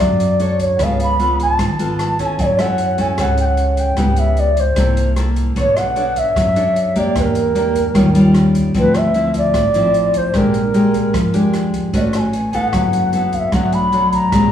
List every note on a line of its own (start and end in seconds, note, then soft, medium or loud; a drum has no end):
0.00 0.75 F#2 medium
0.00 0.77 F#3 soft
0.00 0.37 D4 medium
0.00 0.37 A4 medium
0.00 0.65 D5 medium
0.20 closed hi-hat soft
0.40 0.65 D4 soft
0.40 0.66 A4 soft
0.40 0.66 C#5 medium
0.40 closed hi-hat soft
0.59 0.85 C#5 medium
0.59 kick soft
0.59 closed hi-hat soft
0.79 1.55 C#2 medium
0.79 1.57 C#3 soft
0.79 1.16 B3 medium
0.79 1.16 F4 soft
0.79 1.16 A4 medium
0.79 kick medium
0.79 cross-stick soft
0.79 closed hi-hat medium
0.83 1.01 F5 medium
1.00 1.38 B5 loud
1.00 closed hi-hat soft
1.19 1.76 B3 medium
1.19 1.76 F4 soft
1.19 1.76 A4 medium
1.19 closed hi-hat soft
1.39 1.54 G#5 medium
1.39 kick soft
1.39 closed hi-hat soft
1.54 2.21 A5 medium
1.59 2.34 G#1 medium
1.59 kick medium
1.59 cross-stick medium
1.59 closed hi-hat medium
1.79 2.16 B3 soft
1.79 2.16 F4 medium
1.79 2.16 A4 medium
1.79 closed hi-hat soft
1.99 cross-stick medium
1.99 closed hi-hat soft
2.19 2.58 C#4 medium
2.19 2.58 E4 medium
2.19 2.59 A4 medium
2.19 2.27 A5 medium
2.19 kick soft
2.19 closed hi-hat soft
2.26 2.43 G#5 medium
2.39 3.14 F#2 medium
2.39 3.16 F#3 medium
2.39 2.47 D5 medium
2.39 kick medium
2.39 closed hi-hat medium
2.46 2.63 C#5 medium
2.59 2.95 C#4 medium
2.59 2.95 E4 medium
2.59 2.96 A4 medium
2.59 3.03 F#5 medium
2.59 cross-stick medium
2.59 closed hi-hat soft
2.78 closed hi-hat soft
2.98 3.15 C#4 medium
2.98 3.15 E4 medium
2.98 3.15 A4 medium
2.98 3.23 G#5 medium
2.98 kick soft
2.98 closed hi-hat soft
3.18 3.93 C#2 medium
3.18 3.96 C#3 soft
3.18 3.94 C#4 soft
3.18 3.94 E4 soft
3.18 3.95 A4 medium
3.18 3.40 F#5 medium
3.18 kick medium
3.18 cross-stick medium
3.18 closed hi-hat medium
3.37 3.46 G5 medium
3.37 closed hi-hat soft
3.45 3.81 F#5 medium
3.57 closed hi-hat soft
3.77 4.21 G5 medium
3.77 kick soft
3.77 closed hi-hat soft
3.97 4.73 C#2 medium
3.97 4.75 C#3 soft
3.97 4.51 B3 medium
3.97 4.51 E4 soft
3.97 4.51 G4 medium
3.97 kick soft
3.97 cross-stick soft
3.97 closed hi-hat soft
4.16 4.41 E5 medium
4.16 closed hi-hat soft
4.37 4.62 D5 medium
4.37 closed hi-hat soft
4.57 5.11 C5 medium
4.57 kick soft
4.57 closed hi-hat soft
4.76 5.52 C2 medium
4.76 5.55 C3 soft
4.76 5.14 A#3 medium
4.76 5.14 E4 soft
4.76 5.14 A4 medium
4.76 kick medium
4.76 cross-stick medium
4.76 closed hi-hat medium
4.97 closed hi-hat soft
5.16 5.55 A#3 soft
5.16 5.55 E4 soft
5.16 5.55 A4 soft
5.16 cross-stick medium
5.16 closed hi-hat soft
5.36 kick soft
5.36 closed hi-hat soft
5.56 6.32 B1 medium
5.56 6.34 B3 soft
5.56 5.82 D4 medium
5.56 5.82 A4 soft
5.56 5.82 C#5 medium
5.56 5.80 C#5 medium
5.56 kick soft
5.56 closed hi-hat soft
5.77 6.20 F#5 loud
5.77 cross-stick soft
5.77 closed hi-hat soft
5.96 6.53 D4 medium
5.96 6.53 A4 medium
5.96 6.53 C#5 medium
5.96 closed hi-hat soft
6.16 7.00 E5 loud
6.16 kick soft
6.16 closed hi-hat soft
6.36 7.12 F#2 medium
6.36 7.14 F#3 soft
6.36 kick medium
6.36 cross-stick medium
6.36 closed hi-hat medium
6.56 6.93 D4 medium
6.56 6.93 A4 medium
6.56 6.93 C#5 medium
6.56 closed hi-hat soft
6.76 closed hi-hat soft
6.96 7.52 A#3 medium
6.96 7.52 D4 medium
6.96 7.52 G4 medium
6.96 7.17 D5 medium
6.96 kick soft
6.96 closed hi-hat soft
7.15 7.91 E2 medium
7.15 7.93 E3 medium
7.15 7.23 B4 medium
7.15 kick medium
7.15 cross-stick medium
7.15 closed hi-hat medium
7.22 8.33 A#4 medium
7.35 closed hi-hat soft
7.55 7.82 A#3 medium
7.55 7.82 D4 medium
7.55 7.83 G4 medium
7.55 closed hi-hat soft
7.75 kick soft
7.75 closed hi-hat soft
7.94 8.71 D#2 medium
7.94 8.72 D#3 soft
7.94 8.07 G3 medium
7.94 8.07 C#4 soft
7.94 8.07 F4 medium
7.94 kick medium
7.94 cross-stick medium
7.94 closed hi-hat medium
8.15 8.72 G3 medium
8.15 8.72 C#4 medium
8.15 8.72 F4 medium
8.15 closed hi-hat soft
8.34 cross-stick medium
8.34 closed hi-hat soft
8.55 kick soft
8.55 closed hi-hat soft
8.74 9.50 D2 medium
8.74 9.53 D3 soft
8.74 9.12 F3 medium
8.74 9.12 C4 medium
8.74 9.12 E4 medium
8.74 kick soft
8.74 closed hi-hat medium
8.79 9.00 B4 medium
8.94 cross-stick medium
8.94 closed hi-hat soft
8.99 9.36 E5 loud
9.14 9.54 F3 soft
9.14 9.55 C4 soft
9.14 9.55 E4 medium
9.14 closed hi-hat soft
9.34 10.19 D5 loud
9.34 kick soft
9.34 closed hi-hat soft
9.54 10.30 A1 medium
9.54 10.32 A2 medium
9.54 kick medium
9.54 cross-stick medium
9.54 closed hi-hat medium
9.74 10.31 F3 medium
9.74 10.31 C4 medium
9.74 10.31 E4 medium
9.74 closed hi-hat soft
9.94 closed hi-hat soft
10.14 10.39 C5 medium
10.14 kick soft
10.14 closed hi-hat soft
10.34 11.09 A#1 medium
10.34 11.12 A#2 soft
10.34 10.60 G#3 soft
10.34 10.60 D4 medium
10.34 10.60 G4 medium
10.34 11.55 A#4 medium
10.34 kick medium
10.34 cross-stick medium
10.34 closed hi-hat soft
10.54 closed hi-hat soft
10.74 11.13 G#3 medium
10.74 11.14 D4 soft
10.74 11.14 G4 medium
10.74 closed hi-hat soft
10.94 kick soft
10.94 closed hi-hat soft
11.13 11.89 F2 medium
11.13 11.91 F3 soft
11.13 kick medium
11.13 cross-stick medium
11.13 closed hi-hat medium
11.33 11.90 G#3 medium
11.33 11.90 D4 medium
11.33 11.90 G4 medium
11.33 closed hi-hat soft
11.54 cross-stick medium
11.54 closed hi-hat soft
11.73 kick soft
11.73 closed hi-hat soft
11.93 12.69 A1 medium
11.93 12.71 A3 soft
11.93 12.33 C#4 medium
11.93 12.33 F#4 medium
11.93 12.33 B4 medium
11.93 12.02 D#5 medium
11.93 kick soft
11.93 closed hi-hat medium
12.01 12.17 D5 medium
12.13 12.21 A5 medium
12.13 cross-stick medium
12.13 closed hi-hat soft
12.20 12.57 G#5 medium
12.33 closed hi-hat soft
12.53 13.10 B3 medium
12.53 13.10 E4 medium
12.53 13.10 A4 medium
12.53 13.36 F#5 medium
12.53 kick soft
12.53 closed hi-hat soft
12.73 13.48 F#1 medium
12.73 13.50 F#3 medium
12.73 kick medium
12.73 cross-stick medium
12.73 closed hi-hat medium
12.93 closed hi-hat soft
13.13 13.49 B3 soft
13.13 13.50 E4 soft
13.13 13.50 A4 soft
13.13 closed hi-hat soft
13.32 13.40 F5 medium
13.32 kick soft
13.32 closed hi-hat soft
13.39 13.56 E5 medium
13.52 14.28 B1 medium
13.52 14.30 B2 soft
13.52 13.89 F#3 soft
13.52 13.89 A3 soft
13.52 13.90 D4 medium
13.52 13.76 F#5 medium
13.52 kick medium
13.52 cross-stick medium
13.52 closed hi-hat soft
13.72 14.13 B5 medium
13.72 closed hi-hat soft
13.92 14.30 F#3 medium
13.92 14.31 A3 soft
13.92 14.31 D4 medium
13.92 closed hi-hat soft
14.12 14.52 A#5 loud
14.12 kick soft
14.12 closed hi-hat soft
14.32 14.52 A#1 medium
14.32 14.52 A#2 medium
14.32 14.49 G#3 soft
14.32 14.49 C4 soft
14.32 14.49 D4 medium
14.32 kick medium
14.32 cross-stick medium
14.32 closed hi-hat medium